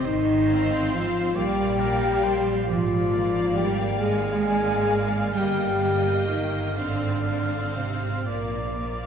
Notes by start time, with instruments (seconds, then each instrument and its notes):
0.04 double bass section G#1, cello section D#3, french horn section D#4, oboe C5, flute section D#5
0.47 viola section C4, violin section C5 F5
0.91 cello section F3, french horn section F4, flute section F5
1.35 double bass section A#1, cello section G3, viola section A#3, french horn section G4, violin section D5 F5, oboe D5, flute section G5
1.79 viola section A#3, oboe A#4, violin section D5 F5
2.24 oboe C5
2.67 double bass section G#1, cello section F3, french horn section F4, oboe D5, flute section F5
3.11 viola section A#3, violin section D5 F5
3.55 cello section G3, french horn section G4, flute section G5
3.98 double bass section G#1, cello section G#3, french horn section G#4, oboe F5, flute section G#5
4.44 viola section A#3, violin section D5 F5
5.33 double bass section G1, cello section G3, viola section A#3, french horn section G4, violin section D#5 G5, flute section G5
5.80 viola section A#3, violin section D#5 G5
6.28 cello section D#3, french horn section D#4, flute section D#5
6.75 double bass section G#1, cello section D3, viola section C4, french horn section D4, violin section C5 F5, flute section D5, oboe F5
7.25 viola section C4, violin section C5 F5
7.75 cello section C3, french horn section C4, flute section C5
8.25 double bass section A#1, cello section A#2, viola section A#3, french horn section A#3, flute section A#4, violin section D5 F5, oboe D5
8.78 viola section A#3, violin section D5 F5